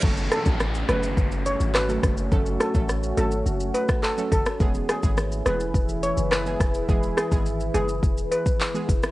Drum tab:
CC |x---------------|----------------|----------------|----------------|
HH |--x---x---x---x-|--x---x---x---x-|--x---x---x---x-|--x---x---x---x-|
SH |xxxxxxxxxxxxxxxx|xxxxxxxxxxxxxxxx|xxxxxxxxxxxxxxxx|xxxxxxxxxxxxxxxx|
CP |------------x---|------------x---|------------x---|------------x---|
SD |--r-r-r-----r-r-|--r-r------r---r|--r-r-r-----r-r-|--r------------r|
BD |o--o----o-----o-|o--o-------o--o-|o--o----o-----o-|o--o----o--o--o-|